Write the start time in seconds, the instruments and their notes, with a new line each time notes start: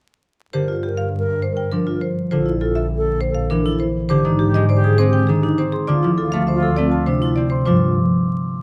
0.53 double bass section G2, harp D3, vibraphone G4, alto flute A#4, marimba C5
0.68 vibraphone F4
0.83 marimba G4, vibraphone G4, alto flute A#4
0.97 marimba F5
1.19 alto flute A#4
1.42 marimba C5
1.52 alto flute A#4
1.57 marimba G5
1.72 harp F3, vibraphone D4, marimba A#4
1.84 vibraphone F4, alto flute A#4
2.01 marimba C5
2.31 double bass section A#1, harp D3, vibraphone F4, alto flute A4, marimba C5
2.46 vibraphone E4
2.61 vibraphone F4, marimba A4, alto flute A4
2.75 marimba E5
2.97 alto flute A4
3.21 marimba C5
3.30 alto flute A4
3.34 marimba F5
3.50 harp E3, vibraphone D4, marimba A#4
3.62 vibraphone E4, alto flute A4
3.80 marimba C5
4.09 double bass section G#2, harp D3, alto flute G4, vibraphone G4, marimba C5, glockenspiel D6
4.25 harp D#3, vibraphone D#4
4.39 marimba G4, vibraphone G4, alto flute G4
4.54 harp G#3, marimba D#5
4.69 vibraphone C5, marimba D5
4.75 alto flute G4
4.84 vibraphone G#4, glockenspiel D#6
4.98 harp G#3, vibraphone C4, marimba C5
5.07 alto flute G4
5.13 marimba G5
5.27 harp D#3, vibraphone D4, marimba G#4
5.40 vibraphone D#4, alto flute G4
5.58 harp C4, marimba C5
5.72 marimba G#4, glockenspiel C6
5.87 double bass section D2, harp D3, vibraphone F4, alto flute F4, marimba D5, glockenspiel D6
6.03 harp F3, vibraphone E4
6.18 vibraphone F4, alto flute F4, marimba A4
6.32 harp A3, marimba F5
6.47 vibraphone C5, marimba E5
6.54 alto flute F4
6.63 vibraphone A4, glockenspiel E6
6.76 harp A3, vibraphone C4, marimba D5
6.86 alto flute F4
6.91 marimba A5
7.06 harp C3, vibraphone D4, marimba C5
7.19 vibraphone E4, alto flute F4
7.36 harp C4, marimba D5
7.50 marimba C5, glockenspiel C6
7.66 double bass section G2, harp F3, vibraphone F4, marimba C5, glockenspiel D6